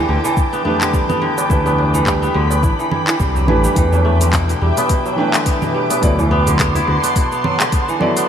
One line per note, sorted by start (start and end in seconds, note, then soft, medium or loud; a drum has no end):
0.00 0.14 E3 loud
0.00 0.61 E3 medium
0.00 0.14 G3 loud
0.00 0.62 A3 medium
0.00 0.52 B3 loud
0.00 0.62 D4 medium
0.00 0.36 E4 medium
0.00 0.63 G4 medium
0.00 0.63 B4 medium
0.00 3.73 G5 medium
0.00 1.48 A5 medium
0.00 3.72 D6 medium
0.08 0.19 D2 medium
0.08 0.80 D3 medium
0.24 0.84 E3 loud
0.24 tabla na medium
0.24 shaker medium
0.37 1.49 E4 medium
0.37 kick loud
0.37 shaker soft
0.53 0.64 B3 medium
0.53 shaker soft
0.63 1.46 E3 medium
0.63 1.47 A3 medium
0.63 1.09 B3 loud
0.63 1.47 D4 medium
0.63 1.48 G4 medium
0.63 tabla ge medium
0.67 1.48 B4 loud
0.81 1.20 D3 loud
0.81 clap medium
0.81 shaker medium
0.93 1.27 G3 medium
0.93 kick medium
0.93 shaker soft
1.09 1.37 B3 loud
1.09 low conga medium
1.09 shaker soft
1.22 2.33 D3 loud
1.22 tabla tin medium
1.37 1.65 B3 medium
1.37 tabla na medium
1.37 tabla tin soft
1.37 shaker medium
1.49 2.28 D2 medium
1.49 1.65 E3 medium
1.49 1.65 A3 medium
1.49 1.65 D4 medium
1.49 2.63 E4 medium
1.49 1.66 G4 medium
1.49 1.66 B4 loud
1.49 3.74 B5 medium
1.49 kick medium
1.49 shaker medium
1.66 2.22 B3 medium
1.66 tabla na medium
1.66 tabla ge medium
1.66 shaker soft
1.78 3.46 D4 medium
1.78 tabla na medium
1.78 tabla tin soft
1.94 2.40 E3 medium
1.94 tabla ge medium
1.94 shaker medium
2.06 2.40 G3 loud
2.06 kick loud
2.06 clap medium
2.06 shaker medium
2.22 2.50 B3 loud
2.22 shaker soft
2.34 2.65 D2 medium
2.34 3.82 D3 loud
2.50 4.37 B3 medium
2.50 tabla na medium
2.50 shaker medium
2.63 2.73 A1 medium
2.63 2.91 E4 medium
2.63 kick loud
2.63 shaker medium
2.79 3.06 E3 medium
2.79 shaker soft
2.91 3.48 E4 medium
2.91 low conga medium
3.07 3.75 E3 medium
3.07 clap medium
3.07 tabla na soft
3.07 tabla tin medium
3.07 shaker medium
3.20 3.50 C2 medium
3.20 3.63 G3 medium
3.20 kick loud
3.20 shaker soft
3.36 3.82 F#3 medium
3.36 tabla ge medium
3.36 shaker soft
3.47 3.68 A1 medium
3.47 3.73 E3 medium
3.47 3.73 A3 medium
3.47 3.73 D4 medium
3.47 5.05 E4 medium
3.47 3.74 G4 medium
3.47 3.74 B4 loud
3.47 tabla na medium
3.47 low conga medium
3.64 3.82 G3 medium
3.64 shaker medium
3.74 4.54 E2 medium
3.74 5.14 E3 medium
3.74 4.24 E3 medium
3.74 5.14 A3 medium
3.74 5.15 D4 medium
3.74 6.01 B4 medium
3.74 6.01 E5 medium
3.74 6.01 G5 medium
3.74 5.15 G5 medium
3.74 8.26 D6 loud
3.74 kick medium
3.74 open hi-hat medium
3.74 shaker medium
3.78 5.16 B4 medium
3.92 4.24 F#3 medium
3.92 tabla na medium
3.92 tabla ge medium
3.92 shaker soft
4.05 5.17 A3 medium
4.05 tabla na medium
4.05 tabla tin soft
4.21 4.38 D3 medium
4.21 open hi-hat soft
4.21 tabla ge medium
4.21 shaker medium
4.33 4.48 B2 loud
4.33 kick loud
4.33 clap medium
4.33 open hi-hat medium
4.33 shaker medium
4.49 4.89 B2 medium
4.49 open hi-hat soft
4.49 shaker soft
4.61 4.72 E2 medium
4.61 5.37 G3 medium
4.77 5.46 B3 loud
4.77 open hi-hat soft
4.77 tabla na medium
4.77 shaker medium
4.89 5.37 B2 medium
4.89 kick loud
4.89 open hi-hat medium
4.89 shaker medium
5.06 5.37 F#3 medium
5.06 tabla na medium
5.06 shaker soft
5.16 5.99 E3 medium
5.16 5.99 A3 medium
5.16 7.18 A3 medium
5.16 6.00 D4 medium
5.16 6.01 B4 loud
5.16 6.00 G5 medium
5.34 5.66 D3 medium
5.34 clap medium
5.34 open hi-hat soft
5.34 shaker medium
5.46 5.90 B3 medium
5.46 kick loud
5.46 open hi-hat medium
5.46 shaker medium
5.62 6.01 B2 medium
5.62 low conga medium
5.62 shaker soft
5.74 6.08 G3 medium
5.74 tabla tin medium
5.90 6.31 B3 medium
5.90 open hi-hat soft
5.90 tabla na medium
5.90 tabla tin soft
5.90 shaker medium
6.01 6.81 D2 medium
6.01 6.50 B2 medium
6.01 6.17 F#3 loud
6.01 6.18 B3 medium
6.01 6.18 E4 medium
6.01 6.18 A4 medium
6.01 6.18 D5 loud
6.01 8.27 F#5 medium
6.01 8.27 A5 medium
6.01 8.27 C6 medium
6.01 kick loud
6.01 open hi-hat medium
6.01 shaker medium
6.19 6.50 E3 medium
6.19 tabla na medium
6.19 tabla ge medium
6.19 shaker soft
6.31 6.59 B3 loud
6.31 tabla na medium
6.31 tabla tin medium
6.47 6.86 D3 medium
6.47 open hi-hat soft
6.47 tabla ge loud
6.47 shaker medium
6.59 7.03 B3 medium
6.59 kick loud
6.59 clap medium
6.59 open hi-hat medium
6.59 shaker medium
6.75 8.29 E4 loud
6.75 open hi-hat soft
6.75 shaker soft
6.87 6.98 D2 medium
6.87 7.21 D3 medium
7.03 7.32 B3 medium
7.03 open hi-hat soft
7.03 tabla na medium
7.03 shaker medium
7.16 7.64 B2 medium
7.16 kick loud
7.16 open hi-hat medium
7.16 shaker medium
7.32 7.72 B3 medium
7.32 shaker soft
7.44 7.64 F#3 medium
7.44 low conga medium
7.60 8.00 D3 medium
7.60 clap medium
7.60 open hi-hat soft
7.60 tabla na soft
7.60 tabla tin medium
7.60 shaker medium
7.72 8.16 B3 medium
7.72 kick loud
7.72 open hi-hat medium
7.72 shaker medium
7.88 8.06 E3 medium
7.88 shaker soft
8.00 8.29 D3 medium
8.00 8.26 F#3 loud
8.00 8.26 B3 medium
8.00 8.26 E4 medium
8.00 8.26 A4 medium
8.00 8.27 D5 loud
8.00 tabla na medium
8.00 low conga medium
8.17 8.29 B3 medium
8.17 open hi-hat soft
8.17 shaker medium